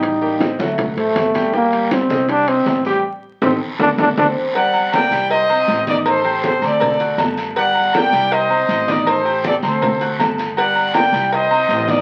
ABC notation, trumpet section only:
X:1
M:4/4
L:1/8
Q:1/4=160
K:Gm
V:1 name="Trumpet section"
z8 | z8 | z8 | [d^f]2 [dg]2 [ce]3 [Bd] |
[Ac]2 [Ac] [Ad]3 z2 | [d^f]2 [dg]2 [ce]3 [Bd] | [Ac]2 [Ad] [Ac]3 z2 | [d^f]2 [dg]2 [ce]3 [Bd] |]